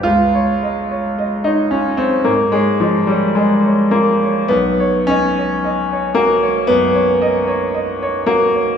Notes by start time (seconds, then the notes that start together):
0.03 C#2 F4
0.35 C#5
0.63 D#5
0.91 C#5
1.19 D#5
1.44 D#4 C#5
1.71 C#4 F4
1.97 C4 C#5
2.24 G#2 A#3
2.52 G#3 C#5
2.80 F3 D#5
3.07 G3 C#5
3.35 G#3 D#5
3.65 C#5
3.91 A#3 F4
4.23 C#5
4.48 B1 B3
4.80 C#5
5.07 C#4 D#5
5.38 C#5
5.64 D#5
5.92 C#5
6.14 A#3 F#4
6.43 C#5
6.67 F#2 B3
6.95 C#5
7.22 D#5
7.47 C#5
7.74 D#5
8.02 C#5
8.26 A#3 F#4
8.55 C#5